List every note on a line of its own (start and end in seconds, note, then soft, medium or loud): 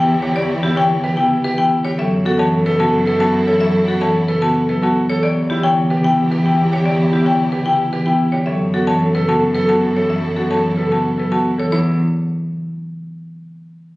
0.00 1.84 E2 medium
0.00 0.13 B3 loud
0.00 0.14 E4 medium
0.00 1.81 E4 medium
0.00 1.80 G4 medium
0.00 0.14 G5 loud
0.15 0.35 G4 loud
0.22 0.40 D3 medium
0.22 0.41 G4 loud
0.22 0.40 C#5 medium
0.36 0.54 E3 loud
0.36 0.54 C#5 medium
0.36 0.54 D5 loud
0.43 0.63 G4 loud
0.63 0.81 B3 medium
0.63 0.81 E4 loud
0.63 0.81 G4 medium
0.71 0.91 G4 medium
0.76 0.94 D3 loud
0.76 0.95 C#5 loud
0.76 0.95 G5 loud
0.99 1.19 G4 medium
1.03 1.21 C#3 medium
1.03 1.22 G4 loud
1.03 1.22 B4 medium
1.17 1.35 B3 loud
1.17 1.35 E4 medium
1.17 1.35 G5 loud
1.27 1.48 G4 medium
1.44 1.62 E3 medium
1.44 1.62 G4 loud
1.44 1.62 B4 medium
1.55 1.76 B3 loud
1.55 1.76 E4 medium
1.55 1.76 G4 soft
1.55 1.76 G5 loud
1.85 2.03 D3 medium
1.85 2.03 G4 loud
1.85 2.03 C#5 loud
1.97 5.08 F#2 medium
1.97 2.16 F#3 loud
1.97 5.05 E4 medium
1.97 2.18 A4 medium
1.97 5.05 A4 medium
1.97 2.16 C#5 medium
1.97 2.16 E5 loud
2.25 2.43 B3 medium
2.25 2.43 F#4 loud
2.25 2.43 A4 medium
2.25 2.46 A4 medium
2.39 2.57 E3 loud
2.39 2.57 C#5 medium
2.39 2.57 A5 loud
2.54 2.74 A4 medium
2.66 2.84 C#3 medium
2.66 2.84 A4 loud
2.66 2.84 B4 medium
2.79 2.97 B3 loud
2.79 2.97 F#4 medium
2.79 3.03 A4 medium
2.79 2.97 A5 loud
3.06 3.24 F#3 medium
3.06 3.24 A4 loud
3.06 3.30 A4 loud
3.06 3.25 B4 medium
3.20 3.38 B3 loud
3.20 3.38 F#4 medium
3.20 3.38 A5 loud
3.39 3.59 A4 loud
3.47 3.65 E3 medium
3.47 3.65 A4 loud
3.47 3.65 C#5 loud
3.60 3.78 F#3 loud
3.60 3.78 C#5 medium
3.60 3.78 E5 loud
3.67 3.87 A4 loud
3.88 4.05 B3 medium
3.88 4.05 F#4 loud
3.88 4.06 A4 medium
3.96 4.16 A4 medium
4.01 4.19 E3 loud
4.01 4.19 C#5 medium
4.01 4.19 A5 loud
4.24 4.44 A4 medium
4.28 4.46 C#3 medium
4.28 4.46 A4 loud
4.28 4.46 B4 medium
4.42 4.59 B3 loud
4.42 4.60 F#4 medium
4.42 4.60 A5 loud
4.53 4.72 A4 medium
4.69 4.86 F#3 medium
4.69 4.87 A4 loud
4.69 4.87 B4 medium
4.81 5.00 B3 loud
4.81 5.00 F#4 medium
4.81 5.01 A4 soft
4.81 5.00 A5 loud
5.10 5.22 E3 medium
5.10 5.27 A4 loud
5.10 5.27 C#5 medium
5.22 8.33 E2 medium
5.22 5.41 E3 loud
5.22 8.29 E4 medium
5.22 8.29 G4 medium
5.22 5.43 G4 medium
5.22 5.41 C#5 medium
5.22 5.41 D5 loud
5.50 5.68 B3 medium
5.50 5.68 E4 loud
5.50 5.68 G4 medium
5.50 5.71 G4 medium
5.63 5.81 D3 loud
5.63 5.81 C#5 medium
5.63 5.81 G5 loud
5.80 6.00 G4 medium
5.90 6.08 C#3 medium
5.90 6.08 G4 loud
5.90 6.08 B4 medium
6.03 6.21 B3 loud
6.03 6.22 E4 medium
6.03 6.22 G5 loud
6.08 6.28 G4 medium
6.31 6.49 E3 medium
6.31 6.49 G4 loud
6.31 6.49 B4 medium
6.36 6.56 G4 medium
6.44 6.62 B3 loud
6.44 6.62 E4 medium
6.44 6.63 G5 loud
6.65 6.84 G4 loud
6.71 6.89 D3 medium
6.71 6.89 G4 loud
6.71 6.90 C#5 medium
6.85 7.03 E3 loud
6.85 7.03 C#5 medium
6.85 7.03 D5 loud
6.93 7.12 G4 loud
7.12 7.30 B3 medium
7.12 7.30 E4 medium
7.12 7.30 G4 medium
7.21 7.43 D3 loud
7.21 7.41 G4 medium
7.26 7.43 C#5 medium
7.26 7.43 G5 loud
7.49 7.70 C#3 medium
7.49 7.69 G4 medium
7.49 7.70 G4 loud
7.49 7.70 B4 medium
7.66 7.84 B3 medium
7.66 7.84 E4 medium
7.66 7.84 G5 loud
7.77 7.97 G4 medium
7.93 8.11 E3 medium
7.93 8.11 G4 loud
7.93 8.11 B4 medium
8.05 8.24 B3 loud
8.05 8.24 E4 medium
8.05 8.25 G4 soft
8.05 8.24 G5 loud
8.32 8.51 D3 medium
8.32 8.51 G4 medium
8.32 8.51 C#5 medium
8.46 11.57 F#2 medium
8.46 8.65 F#3 medium
8.46 11.54 E4 medium
8.46 8.67 A4 soft
8.46 11.54 A4 medium
8.46 8.65 C#5 medium
8.46 8.64 E5 medium
8.74 8.92 B3 medium
8.74 8.92 F#4 loud
8.74 8.92 A4 medium
8.74 8.95 A4 medium
8.87 9.05 E3 loud
8.87 9.05 C#5 medium
8.87 9.05 A5 loud
9.03 9.23 A4 medium
9.15 9.33 C#3 medium
9.15 9.32 A4 loud
9.15 9.32 B4 medium
9.28 9.46 B3 loud
9.28 9.46 F#4 medium
9.28 9.51 A4 loud
9.28 9.46 A5 loud
9.55 9.73 F#3 medium
9.55 9.73 A4 loud
9.55 9.73 B4 medium
9.59 9.80 A4 loud
9.69 9.87 B3 loud
9.69 9.86 F#4 medium
9.69 9.87 A5 loud
9.88 10.08 A4 medium
9.96 10.14 E3 medium
9.96 10.14 A4 loud
9.96 10.14 C#5 medium
10.10 10.27 F#3 medium
10.10 10.27 C#5 medium
10.10 10.27 E5 medium
10.16 10.36 A4 medium
10.36 10.54 B3 medium
10.36 10.54 F#4 medium
10.36 10.54 A4 medium
10.44 10.64 A4 medium
10.50 10.68 E3 medium
10.50 10.68 C#5 medium
10.50 10.68 A5 loud
10.73 10.93 A4 medium
10.77 10.95 C#3 medium
10.77 10.95 A4 medium
10.77 10.95 B4 medium
10.90 11.08 B3 medium
10.90 11.08 F#4 medium
10.90 11.09 A5 medium
11.01 11.21 A4 medium
11.17 11.35 F#3 medium
11.17 11.35 A4 medium
11.17 11.36 B4 medium
11.30 11.48 B3 medium
11.30 11.49 F#4 medium
11.30 11.49 A4 soft
11.30 11.49 A5 medium
11.58 11.70 E3 medium
11.58 11.76 A4 medium
11.58 11.71 C#5 medium
11.71 11.97 E2 medium
11.71 11.96 E3 medium
11.71 11.97 E4 medium
11.71 11.97 C#5 loud